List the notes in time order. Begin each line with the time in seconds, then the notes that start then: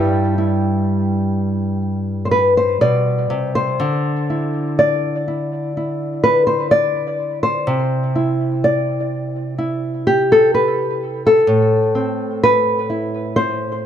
Already playing: G2 G3 E4 G4 D5
0.38 E4
2.25 C5
2.31 B4
2.57 C5
2.81 B2 D5
3.30 C3
3.55 C5
3.80 D3
4.30 E4
4.79 D5
5.28 E4
5.77 E4
6.24 B4
6.47 C5
6.71 D5
7.43 C5
7.67 C3
8.16 E4
8.64 D5
9.58 E4
10.07 G4
10.32 A4
10.55 B4
11.27 A4
11.47 A2
11.95 C4
12.44 B4
12.90 E4
13.36 C5